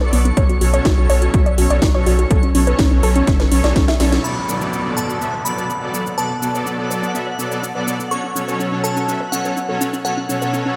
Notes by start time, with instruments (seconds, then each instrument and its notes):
Already playing: synth texture C#6
0.01 supersaw synth B2 F#3 B3 A4 D5, synth pluck B4
0.13 sub bass B1, supersaw synth B2 F#3 B3 A4 D5, synth pluck B3, open hi-hat
0.25 synth pluck B3, closed hi-hat
0.37 sub bass B1, supersaw synth B2 F#3 C#4 A4 C#5, synth pluck C#5, kick, closed hi-hat
0.49 synth pluck F#4, closed hi-hat
0.61 sub bass B1, supersaw synth B2 F#3 C#4 A4 C#5, synth pluck F#4, open hi-hat
0.74 supersaw synth B2 F#3 C#4 A4 C#5, synth pluck C#5, closed hi-hat
0.85 sub bass B1, synth pluck F#4, kick, snare, closed hi-hat
0.98 sub bass B1, supersaw synth B2 F#3 C#4 A4 C#5, synth pluck F#4
1.09 sub bass B1, supersaw synth B2 F#3 C#4 A4 C#5, synth pluck C#5, open hi-hat
1.22 synth pluck F#4, closed hi-hat
1.34 sub bass B1, supersaw synth B2 F#3 C#4 A4, synth pluck F#4, kick, closed hi-hat
1.46 synth pluck D5, closed hi-hat
1.58 sub bass B1, supersaw synth B2 F#3 C#4 A4 C#5, synth pluck F#4, open hi-hat
1.70 sub bass B1, supersaw synth B2 F#3 C#4 A4 C#5, synth pluck D5, closed hi-hat
1.82 sub bass B1, synth pluck F#4, kick, snare, closed hi-hat
1.95 supersaw synth B2 F#3 C#4 A4 C#5, synth pluck C#5
2.06 sub bass B1, supersaw synth B2 F#3 C#4 A4 C#5, synth pluck F#4, open hi-hat
2.19 synth pluck F#4, closed hi-hat
2.31 sub bass B1, supersaw synth B2 F#3 C#4 A4 C#5, synth pluck A4, kick, closed hi-hat
2.43 synth pluck C#4, closed hi-hat
2.55 sub bass B1, supersaw synth B2 F#3 C#4 A4 C#5, synth pluck C#4, open hi-hat
2.67 supersaw synth B2 F#3 C#4 A4 C#5, synth pluck B4, closed hi-hat
2.79 sub bass B1, synth pluck C#4, kick, snare, closed hi-hat
2.91 sub bass B1, supersaw synth B2 F#3 C#4 A4 C#5, synth pluck C#4
3.03 sub bass B1, supersaw synth B2 F#3 C#4 A4 C#5, synth pluck A4, open hi-hat
3.16 synth pluck C#4, closed hi-hat
3.27 sub bass F#1, supersaw synth B2 F#3 C#4 A4 E5, synth pluck C#4, kick, snare, closed hi-hat
3.40 synth pluck B4, snare, closed hi-hat
3.52 sub bass B1, supersaw synth B2 F#3 C#4 A4 C#5, synth pluck C#4, open hi-hat
3.64 sub bass B1, synth pluck D5, snare, closed hi-hat
3.76 sub bass B1, supersaw synth B2 F#3 C#4 A4, synth pluck C#4, kick, snare, closed hi-hat
3.88 synth pluck E5, snare, closed hi-hat
4.00 sub bass B1, supersaw synth B2 F#3 C#4 A4 C#5, synth pluck C#4, snare, open hi-hat
4.12 synth pluck C#4, snare, closed hi-hat
4.24 supersaw synth B2 F#3 B3 A4 D5, synth pluck A4, synth texture F#5, synth bell B5, downlifter, cabasa
4.37 synth pluck B3
4.48 supersaw synth B2 F#3 B3 A4 D5, synth pluck B3, cabasa
4.61 supersaw synth B2 F#3 B3 A4 D5, synth pluck B4, cabasa
4.73 synth pluck B3, cabasa
4.85 supersaw synth B2 F#3 B3 A4 D5, synth pluck B3
4.97 supersaw synth B2 F#3 B3 A4 D5, synth pluck A4, synth bell A5, cabasa
5.09 synth pluck B3, cabasa
5.21 supersaw synth B2 F#3 B3 A4 E5, synth pluck B3, cabasa
5.33 synth pluck B4
5.45 supersaw synth B2 F#3 B3 A4 D5, synth pluck B3, synth bell B5, cabasa
5.57 supersaw synth B2 F#3 B3 A4 D5, synth pluck B4, cabasa
5.69 synth pluck B3, cabasa
5.82 supersaw synth B2 F#3 B3 A4 D5, synth pluck A4
5.93 supersaw synth B2 F#3 B3 A4 D5, synth pluck B3, cabasa
6.06 synth pluck B3, cabasa
6.18 supersaw synth B2 F#3 B3 A4 D5, synth pluck B4, synth bell A5, cabasa
6.30 synth pluck B3
6.42 supersaw synth B2 F#3 B3 A4 D5, synth pluck B3, cabasa
6.54 supersaw synth B2 F#3 B3 A4 D5, synth pluck C#5, cabasa
6.66 synth pluck B3, cabasa
6.79 supersaw synth B2 F#3 B3 A4 D5, synth pluck B3
6.90 supersaw synth B2 F#3 B3 A4 D5, synth pluck B4, cabasa
7.03 synth pluck B3, cabasa
7.15 supersaw synth B2 F#3 B3 A4 E5, synth pluck B3, cabasa
7.27 synth pluck C#5
7.39 supersaw synth B2 F#3 B3 A4 D5, synth pluck B3, cabasa
7.51 supersaw synth B2 F#3 B3 A4 D5, synth pluck C#5, cabasa
7.63 synth pluck B3, cabasa
7.75 supersaw synth B2 F#3 B3 A4 D5, synth pluck B4
7.87 supersaw synth B2 F#3 B3 A4 D5, synth pluck B3, cabasa
7.99 synth pluck B3, cabasa
8.11 supersaw synth B2 F#3 C#4 A4 C#5, synth pluck A4, synth bell C#6, cabasa
8.24 synth pluck C#4
8.35 supersaw synth B2 F#3 C#4 A4 C#5, synth pluck C#4, cabasa
8.48 supersaw synth B2 F#3 C#4 A4 C#5, synth pluck B4, cabasa
8.60 synth pluck C#4, cabasa
8.72 supersaw synth B2 F#3 C#4 A4 C#5, synth pluck C#4
8.84 supersaw synth B2 F#3 C#4 A4 C#5, synth pluck A4, synth bell A5, cabasa
8.96 synth pluck C#4, cabasa
9.08 supersaw synth B2 F#3 C#4 A4 E5, synth pluck C#4, cabasa
9.20 synth pluck B4
9.32 supersaw synth B2 F#3 C#4 A4 C#5, synth pluck C#4, synth bell F#5, cabasa
9.45 supersaw synth B2 F#3 C#4 A4 C#5, synth pluck B4, cabasa
9.56 synth pluck C#4, cabasa
9.69 supersaw synth B2 F#3 C#4 A4 C#5, synth pluck A4
9.81 supersaw synth B2 F#3 C#4 A4 C#5, synth pluck C#4, cabasa
9.93 synth pluck C#4, cabasa
10.05 supersaw synth B2 F#3 C#4 A4 C#5, synth pluck A4, synth bell F#5, cabasa
10.17 synth pluck C#4
10.29 supersaw synth B2 F#3 C#4 A4 C#5, synth pluck C#4, cabasa
10.41 supersaw synth B2 F#3 C#4 A4 C#5, synth pluck B4, cabasa
10.53 synth pluck C#4, cabasa
10.66 supersaw synth B2 F#3 C#4 A4 C#5, synth pluck C#4